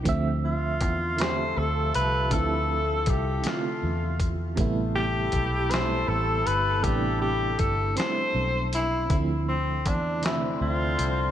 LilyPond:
<<
  \new Staff \with { instrumentName = "Tenor saxophone" } { \time 6/8 \key d \dorian \tempo 4. = 53 r8 f'4 c''8 a'8 b'8 | a'4 g'8 f'4 r8 | r8 g'4 c''8 a'8 b'8 | g'8 g'8 a'8 c''4 e'8 |
r8 c'8 d'8 e'8 f'4 | }
  \new Staff \with { instrumentName = "Horn section" } { \time 6/8 \key d \dorian r4. <a f' a'>4.~ | <a f' a'>2~ <a f' a'>8 r8 | <a e' g' a'>2.~ | <a e' g' a'>2~ <a e' g' a'>8 r8 |
r4. <c' d' a' c''>4. | }
  \new Staff \with { instrumentName = "FM electric piano" } { \time 6/8 \key d \dorian <d f a c' e''>4 r8 <d a c' f' g'>4 r8 | <d f a c' e'>4 r8 <c d a c' e' f'>4 r8 | <c g a b e'>4 r8 <g a c' e'>4 r8 | <c g a b d'>4 r8 <g a c' e'>4 r8 |
<d e f a c' e'>4 r8 <c d e a c' e''>4 r8 | }
  \new Staff \with { instrumentName = "Fingered electric bass" } { \clef bass \time 6/8 \key d \dorian d,4 e,4 d,8 c,8 | d,4 c,8 r8 e,4 | a,,4 b,,4 a,,8 g,,8 | a,,4 g,,8 r8 b,,4 |
d,4 e,4 d,8 c,8 | }
  \new DrumStaff \with { instrumentName = "Drums" } \drummode { \time 6/8 <hh bd>4 <hh bd>8 <hh sn>4 hh8 | <hh bd>4 <hh bd>8 <hh sn>4 <hh bd>8 | <hh bd>4 <hh bd>8 <hh sn>4 hh8 | <hh bd>4 <hh bd>8 <hh sn>4 hh8 |
<hh bd>4 <hh bd>8 <hh sn>4 hh8 | }
>>